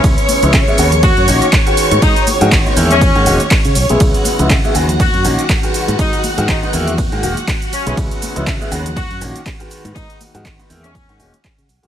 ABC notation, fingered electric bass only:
X:1
M:4/4
L:1/16
Q:"Swing 16ths" 1/4=121
K:C#dor
V:1 name="Fingered electric bass" clef=bass
C,, z2 C,, C, z D,,3 F,, A,,, z4 G,, | G,, z2 G,, G,,, z E,,3 G,, E,,, z2 C, B,,, B,,, | C,, z2 C,, C, z D,,3 F,, A,,, z4 G,, | z3 G,, G,,, z E,,3 G,, E,,, z4 B,,, |
C,, z2 C,, C, z D,,3 F,, A,,, z4 G,, | z3 G,, z2 E,,3 G,, E,,, z2 C, B,,, B,,, |]